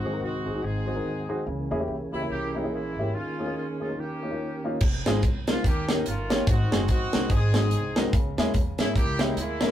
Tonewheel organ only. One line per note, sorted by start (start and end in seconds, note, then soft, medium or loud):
0.00 0.61 D#3 soft
0.00 0.61 G#3 soft
0.00 0.61 C4 soft
0.00 0.61 F#4 medium
0.62 1.45 D#3 medium
0.62 1.45 G#3 soft
0.62 1.45 C4 soft
0.62 1.44 F#4 medium
1.46 3.10 E3 medium
1.46 3.11 A#3 medium
1.46 3.11 C#4 medium
1.46 3.11 G#4 medium
3.12 3.96 D#3 medium
3.12 3.96 A#3 soft
3.12 3.95 C#4 soft
3.12 3.95 G#4 medium
3.97 4.79 D#3 medium
3.97 4.80 A#3 soft
3.97 4.80 C#4 soft
3.97 4.04 F4 soft
4.03 4.82 G4 medium